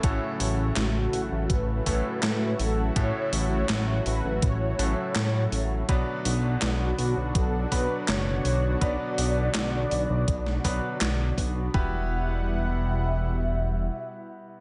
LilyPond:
<<
  \new Staff \with { instrumentName = "Analog polysynth" } { \time 4/4 \key e \dorian \tempo 4 = 82 r4 fis'4 b'4. a'8 | cis''8. cis''8. b'8 cis''4 cis''8. r16 | r4 fis'4 a'8 b'8 cis''4 | d''2.~ d''8 r8 |
e''1 | }
  \new Staff \with { instrumentName = "Grand piano" } { \time 4/4 \key e \dorian <a, a cis' e' fis' a'>2~ <a, a cis' e' fis' a'>8 <a, a cis' e' fis' a'>4. | <a, a cis' e' fis' a'>2~ <a, a cis' e' fis' a'>8 <a, a cis' e' fis' a'>4. | <b, fis b d' fis' b'>2~ <b, fis b d' fis' b'>8 <b, fis b d' fis' b'>4. | <b, fis b d' fis' b'>2~ <b, fis b d' fis' b'>8 <b, fis b d' fis' b'>4. |
<b e' fis' g' b'>1 | }
  \new Staff \with { instrumentName = "Analog synth pad" } { \time 4/4 \key e \dorian <cis fis a e' fis'>1~ | <cis fis a e' fis'>1 | <b, d d' fis'>1~ | <b, d d' fis'>1 |
<b, g e' fis''>1 | }
  \new Staff \with { instrumentName = "Analog synth bass" } { \clef bass \time 4/4 \key e \dorian a,,16 r16 a,,8 a,,8 a,,16 a,,16 a,,8 a,,16 r16 a,8 a,,8 | a,,16 r16 a,,8 a,,8 a,,16 a,,16 a,,8 a,,16 r16 a,8 a,,8 | b,,16 r16 b,,8 b,,8 b,,16 b,,16 b,,8 b,,16 r16 fis,,8 b,,8 | b,,16 r16 b,,8 b,,8 b,,16 b,,16 b,,8 b,,16 r16 b,,8 b,,8 |
e,,2. r4 | }
  \new DrumStaff \with { instrumentName = "Drums" } \drummode { \time 4/4 <hh bd>8 hho8 <hc hh sn>8 hho8 <hh bd>8 <hho bd>8 <hc hh sn>8 hho8 | <hh bd>8 hho8 <hc hh sn>8 hho8 <hh bd>8 hho8 <hc hh sn>8 hho8 | <hh bd>8 hho8 <hc hh sn>8 hho8 <hh bd>8 <hho bd>8 <hc hh sn>8 hho8 | <hh bd>8 hho8 <hc hh sn>8 hho8 <hh bd>16 sn16 <hho bd>8 <hc hh sn>8 <hho bd>8 |
bd4 r4 r4 r4 | }
>>